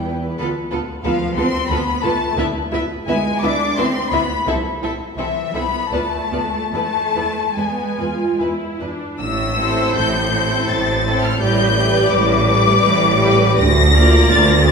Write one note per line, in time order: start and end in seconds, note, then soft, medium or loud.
0.00 0.35 E2 medium
0.00 0.34 B3 medium
0.00 0.35 E4 medium
0.00 0.34 G4 medium
0.00 0.34 B4 medium
0.38 0.46 D2 medium
0.38 0.46 B3 medium
0.38 0.46 F4 medium
0.38 0.46 A4 medium
0.38 0.47 B4 medium
0.71 0.80 D2 medium
0.71 0.80 B3 medium
0.71 0.80 F4 medium
0.71 0.79 A4 medium
0.71 0.79 B4 medium
1.03 1.12 D2 medium
1.03 1.35 F3 medium
1.03 1.14 B3 medium
1.03 1.14 F4 medium
1.03 1.12 A4 medium
1.03 1.12 B4 medium
1.03 1.35 F5 medium
1.36 1.45 D2 medium
1.36 1.46 B3 medium
1.36 1.70 C4 medium
1.36 1.46 F4 medium
1.36 1.45 A4 medium
1.36 1.46 B4 medium
1.36 1.69 C6 loud
1.69 1.78 D2 medium
1.69 1.79 B3 medium
1.69 2.04 B3 medium
1.69 1.79 F4 medium
1.69 1.78 A4 medium
1.69 1.79 B4 medium
1.69 2.03 B5 medium
2.02 2.11 D2 medium
2.02 2.38 A3 medium
2.02 2.12 B3 medium
2.02 2.12 F4 medium
2.02 2.11 A4 medium
2.02 2.11 B4 medium
2.02 2.37 A5 medium
2.38 2.46 D2 medium
2.38 2.46 B3 medium
2.38 2.46 E4 medium
2.38 2.46 B4 medium
2.38 2.46 E5 medium
2.72 2.81 D2 medium
2.72 2.80 B3 medium
2.72 2.80 E4 medium
2.72 2.80 B4 medium
2.72 2.81 E5 medium
3.07 3.16 D2 medium
3.07 3.41 G#3 medium
3.07 3.15 B3 medium
3.07 3.16 E4 medium
3.07 3.16 B4 medium
3.07 3.16 E5 medium
3.07 3.41 G#5 medium
3.42 3.51 D2 medium
3.42 3.51 B3 medium
3.42 3.78 D4 medium
3.42 3.51 E4 medium
3.42 3.51 B4 medium
3.42 3.52 E5 medium
3.42 3.77 D6 loud
3.77 3.86 D2 medium
3.77 3.86 B3 medium
3.77 4.12 C4 medium
3.77 3.86 E4 medium
3.77 3.86 B4 medium
3.77 3.86 E5 medium
3.77 4.12 C6 medium
4.11 4.20 D2 medium
4.11 4.47 B3 medium
4.11 4.20 B3 medium
4.11 4.20 E4 medium
4.11 4.20 B4 medium
4.11 4.20 E5 medium
4.11 4.47 B5 medium
4.47 4.55 C2 medium
4.47 4.55 C4 medium
4.47 4.55 E4 medium
4.47 4.56 A4 medium
4.47 4.56 E5 medium
4.82 4.90 C2 medium
4.82 4.90 C4 medium
4.82 4.90 E4 medium
4.82 4.91 A4 medium
4.82 4.91 E5 medium
5.18 5.26 C2 medium
5.18 5.52 E3 medium
5.18 5.26 C4 medium
5.18 5.26 E4 medium
5.18 5.27 A4 medium
5.18 5.52 E5 medium
5.18 5.27 E5 medium
5.54 5.62 C2 medium
5.54 5.92 B3 medium
5.54 5.63 C4 medium
5.54 5.63 E4 soft
5.54 5.63 A4 medium
5.54 5.63 E5 medium
5.54 5.93 B5 medium
5.92 6.00 D2 medium
5.92 6.72 A3 medium
5.92 6.00 B3 medium
5.92 6.00 F4 soft
5.92 6.01 B4 medium
5.92 6.01 D5 medium
5.92 6.72 A5 medium
6.31 6.39 D2 medium
6.31 6.40 B3 medium
6.31 6.40 F4 soft
6.31 6.41 B4 soft
6.31 6.41 D5 medium
6.73 6.81 E2 medium
6.73 7.55 A3 medium
6.73 6.82 B3 medium
6.73 6.82 E4 soft
6.73 6.83 B4 medium
6.73 7.55 A5 medium
7.15 7.23 E2 medium
7.15 7.24 B3 soft
7.15 7.24 E4 soft
7.15 7.25 B4 soft
7.56 7.65 E2 medium
7.56 8.38 G#3 medium
7.56 7.96 B3 medium
7.56 7.66 B4 soft
7.56 8.40 G#5 medium
7.99 8.07 E2 soft
7.99 8.40 F4 medium
7.99 8.08 B4 soft
8.40 8.48 E2 medium
8.40 8.81 E4 medium
8.40 8.49 B4 soft
8.80 8.88 E2 soft
8.80 9.20 D4 medium
8.80 8.89 B4 soft
9.19 9.86 A1 medium
9.19 9.86 A2 medium
9.19 9.91 E6 loud
9.57 10.32 C4 medium
9.57 10.32 E4 medium
9.57 10.32 A4 medium
9.57 10.32 C5 medium
9.94 10.61 A1 medium
9.94 10.61 A2 medium
9.94 10.70 G6 loud
10.33 11.04 C4 medium
10.33 11.04 E4 medium
10.33 11.04 A4 medium
10.33 11.04 C5 medium
10.69 11.32 A1 medium
10.69 11.32 A2 medium
10.69 11.23 A6 medium
11.06 11.40 C4 medium
11.06 11.40 E4 medium
11.06 11.41 A4 medium
11.06 11.41 C5 medium
11.23 11.41 F6 medium
11.40 12.04 A1 medium
11.40 12.04 A2 medium
11.40 11.75 G3 medium
11.40 11.75 G4 medium
11.40 11.75 B4 medium
11.40 11.74 D5 medium
11.40 12.10 G6 loud
11.76 12.45 G3 medium
11.76 12.45 G4 medium
11.76 12.45 B4 medium
11.76 12.45 D5 medium
12.11 12.73 A1 medium
12.11 12.73 A2 medium
12.11 13.58 D6 loud
12.46 13.17 G3 medium
12.46 13.17 G4 medium
12.46 13.17 B4 medium
12.46 13.17 D5 medium
12.81 13.49 A1 loud
12.81 13.49 A2 medium
13.18 13.57 G3 medium
13.18 13.57 G4 medium
13.18 13.57 B4 medium
13.18 13.57 D5 medium
13.58 14.23 D2 loud
13.58 14.29 A#6 loud
13.95 14.64 A#3 medium
13.95 14.64 F4 medium
13.95 14.64 A#4 medium
13.95 14.64 D5 medium
14.30 14.72 D2 loud
14.30 14.48 A6 loud
14.48 14.66 A#6 loud
14.64 14.72 A#3 medium
14.64 14.72 F4 medium
14.64 14.72 A#4 medium
14.64 14.72 D5 medium
14.64 14.72 A6 loud